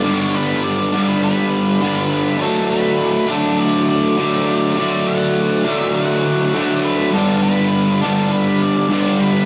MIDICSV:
0, 0, Header, 1, 3, 480
1, 0, Start_track
1, 0, Key_signature, 2, "major"
1, 0, Tempo, 591133
1, 38, Time_signature, 4, 2, 24, 8
1, 7677, End_track
2, 0, Start_track
2, 0, Title_t, "Lead electric guitar"
2, 0, Program_c, 0, 29
2, 0, Note_on_c, 0, 74, 110
2, 152, Note_off_c, 0, 74, 0
2, 152, Note_on_c, 0, 73, 110
2, 280, Note_on_c, 0, 71, 89
2, 290, Note_off_c, 0, 73, 0
2, 517, Note_on_c, 0, 74, 88
2, 525, Note_off_c, 0, 71, 0
2, 851, Note_off_c, 0, 74, 0
2, 881, Note_on_c, 0, 71, 96
2, 993, Note_off_c, 0, 71, 0
2, 1003, Note_on_c, 0, 71, 88
2, 1720, Note_off_c, 0, 71, 0
2, 1730, Note_on_c, 0, 71, 87
2, 1960, Note_off_c, 0, 71, 0
2, 1963, Note_on_c, 0, 69, 89
2, 2197, Note_off_c, 0, 69, 0
2, 2200, Note_on_c, 0, 71, 101
2, 2684, Note_off_c, 0, 71, 0
2, 2687, Note_on_c, 0, 69, 86
2, 2904, Note_off_c, 0, 69, 0
2, 2919, Note_on_c, 0, 74, 92
2, 3153, Note_off_c, 0, 74, 0
2, 3162, Note_on_c, 0, 74, 99
2, 3881, Note_off_c, 0, 74, 0
2, 3890, Note_on_c, 0, 74, 88
2, 4120, Note_on_c, 0, 78, 99
2, 4129, Note_off_c, 0, 74, 0
2, 4648, Note_off_c, 0, 78, 0
2, 4648, Note_on_c, 0, 76, 99
2, 4823, Note_off_c, 0, 76, 0
2, 4832, Note_on_c, 0, 78, 83
2, 5556, Note_on_c, 0, 71, 91
2, 5575, Note_off_c, 0, 78, 0
2, 5793, Note_off_c, 0, 71, 0
2, 5796, Note_on_c, 0, 69, 86
2, 6032, Note_off_c, 0, 69, 0
2, 6036, Note_on_c, 0, 71, 102
2, 6510, Note_off_c, 0, 71, 0
2, 6513, Note_on_c, 0, 69, 85
2, 6760, Note_off_c, 0, 69, 0
2, 6763, Note_on_c, 0, 71, 85
2, 7001, Note_on_c, 0, 74, 81
2, 7008, Note_off_c, 0, 71, 0
2, 7238, Note_off_c, 0, 74, 0
2, 7248, Note_on_c, 0, 74, 84
2, 7470, Note_on_c, 0, 71, 82
2, 7491, Note_off_c, 0, 74, 0
2, 7677, Note_off_c, 0, 71, 0
2, 7677, End_track
3, 0, Start_track
3, 0, Title_t, "Overdriven electric guitar"
3, 0, Program_c, 1, 29
3, 29, Note_on_c, 1, 43, 93
3, 40, Note_on_c, 1, 50, 97
3, 50, Note_on_c, 1, 55, 105
3, 58, Note_on_c, 1, 59, 104
3, 68, Note_on_c, 1, 62, 105
3, 737, Note_off_c, 1, 43, 0
3, 743, Note_off_c, 1, 50, 0
3, 743, Note_off_c, 1, 62, 0
3, 747, Note_on_c, 1, 62, 84
3, 748, Note_off_c, 1, 55, 0
3, 752, Note_off_c, 1, 59, 0
3, 761, Note_on_c, 1, 59, 89
3, 770, Note_on_c, 1, 55, 87
3, 778, Note_on_c, 1, 50, 79
3, 787, Note_on_c, 1, 43, 74
3, 1456, Note_off_c, 1, 43, 0
3, 1463, Note_off_c, 1, 59, 0
3, 1465, Note_off_c, 1, 50, 0
3, 1466, Note_on_c, 1, 43, 82
3, 1467, Note_off_c, 1, 55, 0
3, 1475, Note_on_c, 1, 50, 87
3, 1488, Note_on_c, 1, 55, 70
3, 1500, Note_on_c, 1, 59, 84
3, 1503, Note_off_c, 1, 62, 0
3, 1506, Note_on_c, 1, 62, 85
3, 1926, Note_off_c, 1, 50, 0
3, 1935, Note_off_c, 1, 43, 0
3, 1935, Note_on_c, 1, 50, 93
3, 1947, Note_off_c, 1, 55, 0
3, 1952, Note_off_c, 1, 59, 0
3, 1954, Note_on_c, 1, 54, 103
3, 1967, Note_on_c, 1, 57, 98
3, 1976, Note_off_c, 1, 62, 0
3, 1979, Note_on_c, 1, 62, 95
3, 2660, Note_off_c, 1, 62, 0
3, 2663, Note_on_c, 1, 62, 100
3, 2677, Note_off_c, 1, 57, 0
3, 2680, Note_on_c, 1, 57, 88
3, 2691, Note_off_c, 1, 54, 0
3, 2694, Note_on_c, 1, 54, 81
3, 2704, Note_off_c, 1, 50, 0
3, 2707, Note_on_c, 1, 50, 71
3, 3375, Note_off_c, 1, 50, 0
3, 3382, Note_off_c, 1, 57, 0
3, 3385, Note_on_c, 1, 50, 75
3, 3389, Note_off_c, 1, 54, 0
3, 3400, Note_on_c, 1, 54, 79
3, 3418, Note_on_c, 1, 57, 89
3, 3427, Note_off_c, 1, 62, 0
3, 3430, Note_on_c, 1, 62, 84
3, 3848, Note_off_c, 1, 50, 0
3, 3858, Note_on_c, 1, 50, 99
3, 3862, Note_off_c, 1, 54, 0
3, 3871, Note_off_c, 1, 57, 0
3, 3875, Note_on_c, 1, 54, 110
3, 3891, Note_on_c, 1, 57, 117
3, 3899, Note_off_c, 1, 62, 0
3, 3902, Note_on_c, 1, 62, 114
3, 4571, Note_off_c, 1, 50, 0
3, 4578, Note_off_c, 1, 62, 0
3, 4580, Note_off_c, 1, 54, 0
3, 4582, Note_on_c, 1, 62, 96
3, 4588, Note_off_c, 1, 57, 0
3, 4597, Note_on_c, 1, 57, 79
3, 4610, Note_on_c, 1, 54, 84
3, 4628, Note_on_c, 1, 50, 70
3, 5293, Note_off_c, 1, 50, 0
3, 5301, Note_off_c, 1, 57, 0
3, 5303, Note_on_c, 1, 50, 84
3, 5306, Note_off_c, 1, 54, 0
3, 5316, Note_on_c, 1, 54, 82
3, 5331, Note_on_c, 1, 57, 94
3, 5338, Note_off_c, 1, 62, 0
3, 5341, Note_on_c, 1, 62, 85
3, 5775, Note_off_c, 1, 50, 0
3, 5779, Note_on_c, 1, 43, 96
3, 5781, Note_off_c, 1, 54, 0
3, 5788, Note_off_c, 1, 57, 0
3, 5791, Note_on_c, 1, 50, 101
3, 5803, Note_on_c, 1, 55, 95
3, 5815, Note_on_c, 1, 59, 105
3, 5822, Note_off_c, 1, 62, 0
3, 5825, Note_on_c, 1, 62, 111
3, 6494, Note_off_c, 1, 43, 0
3, 6500, Note_off_c, 1, 50, 0
3, 6500, Note_off_c, 1, 62, 0
3, 6504, Note_on_c, 1, 62, 86
3, 6506, Note_off_c, 1, 55, 0
3, 6508, Note_off_c, 1, 59, 0
3, 6517, Note_on_c, 1, 59, 80
3, 6529, Note_on_c, 1, 55, 90
3, 6542, Note_on_c, 1, 50, 77
3, 6546, Note_on_c, 1, 43, 76
3, 7211, Note_off_c, 1, 43, 0
3, 7220, Note_off_c, 1, 50, 0
3, 7221, Note_on_c, 1, 43, 81
3, 7225, Note_off_c, 1, 59, 0
3, 7229, Note_on_c, 1, 50, 81
3, 7231, Note_off_c, 1, 55, 0
3, 7240, Note_on_c, 1, 55, 83
3, 7254, Note_on_c, 1, 59, 82
3, 7260, Note_off_c, 1, 62, 0
3, 7263, Note_on_c, 1, 62, 89
3, 7677, Note_off_c, 1, 43, 0
3, 7677, Note_off_c, 1, 50, 0
3, 7677, Note_off_c, 1, 55, 0
3, 7677, Note_off_c, 1, 59, 0
3, 7677, Note_off_c, 1, 62, 0
3, 7677, End_track
0, 0, End_of_file